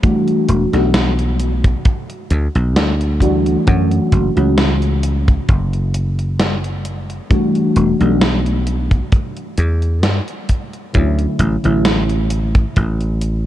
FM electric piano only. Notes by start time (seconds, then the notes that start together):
0.03 E3 G3 A3 D4 F#4
0.72 E3 G3 A3 D4 F#4
3.21 E3 G3 A3 D4 F#4
3.66 E3 F#3 A3 C#4 F#4
4.36 E3 F#3 A3 C#4 F#4
7.30 E3 G3 A3 D4 F#4
7.99 E3 G3 A3 D4 F#4
10.93 D3 F#3 A3 C#4 E4
11.64 D3 F#3 A3 C#4 E4